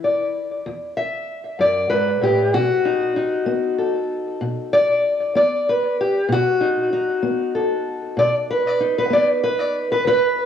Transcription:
Already playing: E3 E4
0.04 D5
0.66 E2
0.97 E5
1.59 F#2 D5
1.90 G#2 B4
2.21 A2 G4
2.54 B2 F#4
2.85 D#4
3.16 D#4
3.46 B3
3.79 A4
4.41 B2
4.73 D5
5.35 B3 D5
5.69 B4
6.00 G4
6.29 B2 F#4
6.61 D#4
6.93 D#4
7.22 B3
7.55 A4
8.17 B2 D5
8.50 B4
8.67 D5
8.80 D#4
8.98 B4
9.10 B3 D5
9.44 B4
9.59 D5
9.92 B4
10.05 E2 B4

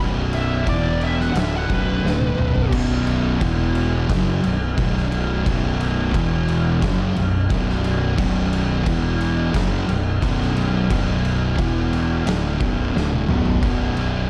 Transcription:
0.00 B0 B1 F#2 B2
0.33 E5, crash
0.67 E1 E2 B2 E3 D5, kick, crash
1.01 E5, crash
1.20 F#5, snare
1.35 D1 D2 A2 D3 E5, snare, crash
1.56 F#5
1.70 B0 B1 F#2 B2 B4, kick, crash
2.03 D1 D2 A2 D3, snare
2.21 high tom
2.38 B0 B1 F#2 B2, mid tom
2.56 floor tom
2.71 B0 B1 F#2 B2, kick, crash
3.07 crash
3.41 E1 E2 B2 E3, kick, crash
3.75 crash
4.09 F#1 F#2 C#3 F#3, kick, snare, crash
4.43 B0 B1 F#2, crash
4.77 B0 B1 F#2 B2, kick, crash
4.97 snare
5.12 crash
5.45 B0 B1 F#2 B2, kick, crash
5.80 crash
6.13 E1 E2 B2 E3, kick, crash
6.48 crash
6.82 F#1 F#2 C#3 F#3, kick, snare, crash
7.16 B0 B1 F#2, crash
7.50 B0 B1 F#2 B2, kick, crash
7.69 snare
7.84 crash
8.17 B0 B1 F#2 B2, kick, crash
8.53 crash
8.86 E1 E2 B2 E3, kick, crash
9.21 crash
9.53 F#1 F#2 C#3 F#3, kick, snare, crash
9.88 B0 B1 F#2, crash
10.22 B0 B1 F#2 B2, kick, crash
10.42 snare
10.57 crash
10.90 B0 B1 F#2 B2, kick, crash
11.25 crash
11.58 E1 E2 B2 E3, kick, crash
11.93 crash
12.27 D1 D2 A2 D3, snare, crash
12.60 B0 B1 F#2 B2, kick, crash
12.95 D1 D2 A2 D3, snare
13.12 high tom
13.28 B0 B1 F#2 B2, mid tom
13.45 floor tom
13.63 B0 B1 F#2 B2, kick, crash
13.97 crash

